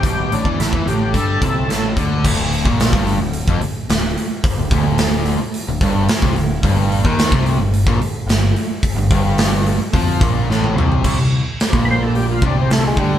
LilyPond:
<<
  \new Staff \with { instrumentName = "Tonewheel organ" } { \time 4/4 \key g \dorian \tempo 4 = 109 g'8 d'8 e'8 g'8 a'4. r8 | r1 | r1 | r1 |
r1 | r4. <b' c''>16 a'16 g'16 f'16 d'16 c'16 a16 gis16 g8 | }
  \new Staff \with { instrumentName = "Distorted electric guitar" } { \clef bass \time 4/4 \key g \dorian b,8 a,16 e16 a,16 e16 a,8 g8 c8 a,8 d8 | d,8. bes,8 g,8 d,8 f,16 r8 d,8 r8 | r16 d,16 d,4~ d,16 r8 d,16 g,8 r16 c16 d,8 | g,8. ees8 c8 g,8 bes,16 r8 g,8 r8 |
r16 g,16 g,4~ g,16 r16 f8 bes,8 a,8 c8 | c16 c8 r8 bes,4~ bes,16 c8 c8 d8 | }
  \new Staff \with { instrumentName = "Overdriven electric guitar" } { \clef bass \time 4/4 \key g \dorian b,8 a,16 e16 a,16 e16 a,8 g8 c8 a,8 d8 | d,8. bes,8 g,8 d,8 f,16 r8 d,8 r8 | r16 d,16 d,4~ d,16 r8 d,16 g,8 r16 c16 d,8 | g,8. ees8 c8 g,8 bes,16 r8 g,8 r8 |
r16 g,16 g,4~ g,16 r16 f8 bes,8 a,8 c8 | c16 c8 r8 bes,4~ bes,16 c8 c8 d8 | }
  \new Staff \with { instrumentName = "Picked electric bass" } { \clef bass \time 4/4 \key g \dorian b,,8 a,,16 e,16 a,,16 e,16 a,,8 g,8 c,8 a,,8 d,8 | d,,8. bes,,8 g,,8 d,,8 f,,16 r8 d,,8 r8 | r16 d,,16 d,,4~ d,,16 r8 d,,16 g,,8 r16 c,16 d,,8 | g,,8. ees,8 c,8 g,,8 bes,,16 r8 g,,8 r8 |
r16 g,,16 g,,4~ g,,16 r16 f,8 bes,,8 a,,8 c,8 | c,16 c,8 r8 bes,,4~ bes,,16 c,8 c,8 d,8 | }
  \new DrumStaff \with { instrumentName = "Drums" } \drummode { \time 4/4 <hh bd>8 hh16 bd16 <hh sn>16 bd16 hh8 <hh bd>8 <hh bd>8 <hh sn>8 <hh bd>8 | <cymc bd>8 hho16 bd16 <hho sn>16 bd16 hho8 hho16 bd16 hho8 <hho sn>8 hho8 | <hho bd>8 <hho bd>8 <hho sn>8 hho8 hho8 <hho bd>8 <hho sn>16 bd16 hho8 | <hho bd>8 hho16 bd16 <hho sn>16 bd16 hho8 hho16 bd16 hho8 <hho sn>8 hho8 |
<hho bd>8 <hho bd>8 <hho sn>8 hho8 <hho bd>8 <hho bd>8 sn16 tommh16 toml16 tomfh16 | <cymc bd>4 <hho sn>16 bd8. hho8 bd8 <hho sn>8 bd8 | }
>>